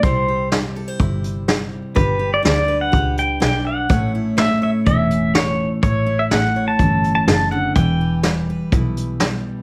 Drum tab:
HH |x-x-xxx-|x-x-xxx-|x-x-xxx-|x-x-xxx-|
SD |--o---o-|--o---o-|--o---o-|--o---o-|
BD |o---o---|o---o---|o---o---|o---o---|

HH |x-x-xxx-|
SD |--o---o-|
BD |o---o---|